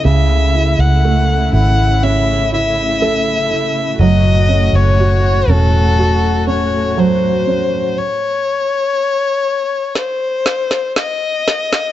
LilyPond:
<<
  \new Staff \with { instrumentName = "Violin" } { \time 4/4 \key fis \dorian \tempo 4 = 60 e''8. fis''8. fis''8 e''8 e''4. | dis''8. cis''8. a'4 cis''8 bis'4 | cis''2 bis'4 dis''4 | }
  \new Staff \with { instrumentName = "Grand piano" } { \time 4/4 \key fis \dorian cis8 e'8 a8 e'8 cis'8 e'8 a'8 e'8 | fis8 cis'8 fis'8 cis'8 fis'8 cis'8 fis8 cis'8 | r1 | }
  \new Staff \with { instrumentName = "String section" } { \time 4/4 \key fis \dorian << { <cis e'>1 | <a, fis'>1 | r1 | } \\ { a2 a2~ | a2 a2 | r1 | } >> }
  \new Staff \with { instrumentName = "Fingered electric bass" } { \clef bass \time 4/4 \key fis \dorian cis,8. cis,8. gis,,2~ gis,,8 | fis,,8. fis,,8. e,,2~ e,,8 | r1 | }
  \new DrumStaff \with { instrumentName = "Drums" } \drummode { \time 4/4 r4 r4 r4 r4 | r4 r4 r4 r4 | r4 r4 sn8 sn16 sn16 sn8 sn16 sn16 | }
>>